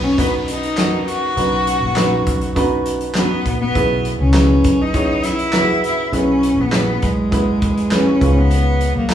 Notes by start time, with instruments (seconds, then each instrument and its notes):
Already playing: fingered electric bass B1, upright piano B3 D#4 F#4 B4, downlifter
0.04 cello C#4
0.17 upright piano B3 D#4 F#4 B4, cello B3, kick, closed hi-hat
0.48 cello D#4, closed hi-hat
0.63 closed hi-hat
0.76 upright piano B3 D#4 F#4 A#4, snare, clap, closed hi-hat
1.08 cello F#4, closed hi-hat
1.36 fingered electric bass B1, upright piano B3 D#4 F#4 B4, closed hi-hat
1.67 closed hi-hat
1.82 fingered electric bass A#1
1.96 upright piano B3 D#4 F#4 B4, snare, clap, closed hi-hat
2.27 fingered electric bass B1, kick, closed hi-hat
2.41 closed hi-hat
2.55 upright piano B3 D#4 F#4 B4, kick, closed hi-hat
2.86 closed hi-hat
3.01 closed hi-hat
3.14 cello B3, upright piano B3 D#4 F#4 B4, snare, clap, closed hi-hat
3.45 fingered electric bass A#1, kick, closed hi-hat
3.61 cello B3
3.75 fingered electric bass B1, upright piano B2 B3 E4 G#4 B4, kick, closed hi-hat
4.05 closed hi-hat
4.20 fingered electric bass C#2, cello C#4
4.33 upright piano B3 E4 G#4 B4, snare, clap, closed hi-hat
4.64 fingered electric bass B1, kick, closed hi-hat
4.81 cello D#4
4.94 upright piano B3 E4 G#4 C#5, kick, closed hi-hat
5.24 cello E4, snare, closed hi-hat
5.39 closed hi-hat
5.52 upright piano B3 E4 F#4 B4, snare, clap, closed hi-hat
5.60 upright piano G#4
5.84 cello E4, closed hi-hat
6.12 fingered electric bass B1, upright piano B3 E4 G#4 B4, cello C#4, closed hi-hat
6.43 closed hi-hat
6.57 fingered electric bass A#1, cello B3
6.71 upright piano B3 E4 G#4 B4, snare, clap, closed hi-hat
7.02 fingered electric bass B1, cello G#3, kick, closed hi-hat
7.31 upright piano B3 E4 G#4 B4, kick, closed hi-hat
7.62 kick, closed hi-hat
7.77 closed hi-hat
7.91 upright piano B3 E4 G#4 B4, cello C#4, snare, clap, closed hi-hat
8.20 fingered electric bass C#2, upright piano G#2 C#4 F4 G#4 B4, kick, closed hi-hat
8.38 cello B3
8.51 closed hi-hat
8.81 closed hi-hat
8.96 fingered electric bass B1, cello A#3
9.09 upright piano C#4 F4, snare, clap, closed hi-hat